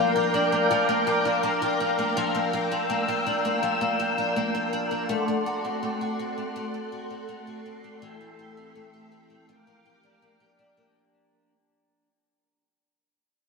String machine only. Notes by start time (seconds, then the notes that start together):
Already playing: A#4 F5 G5 D6
2.17 E6
5.10 A4 D5 F#5 C6
8.02 E5 G5
9.49 A#4 F5 D6